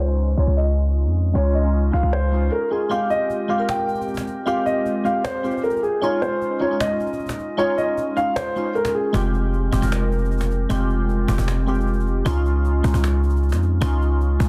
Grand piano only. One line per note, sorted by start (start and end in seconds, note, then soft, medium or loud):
0.00 0.35 C5 medium
0.37 0.54 C#5 medium
0.57 1.31 D#5 medium
1.35 1.51 C#5 medium
1.55 1.91 D#5 medium
1.93 2.10 F5 medium
2.13 2.49 C5 medium
2.52 2.68 A#4 medium
2.71 2.88 G#4 medium
2.91 3.07 F5 medium
3.10 3.47 D#5 medium
3.49 3.66 F5 medium
3.69 4.43 G5 medium
4.47 4.63 F5 medium
4.66 5.03 D#5 medium
5.05 5.21 F5 medium
5.24 5.61 C5 medium
5.63 5.80 A#4 medium
5.83 5.99 G#4 medium
6.03 6.19 C#5 medium
6.22 6.59 C5 medium
6.61 6.77 C#5 medium
6.80 7.54 D#5 medium
7.58 7.75 C#5 medium
7.78 8.14 D#5 medium
8.17 8.33 F5 medium
8.36 8.73 C5 medium
8.75 8.92 A#4 medium
8.95 9.11 G#4 medium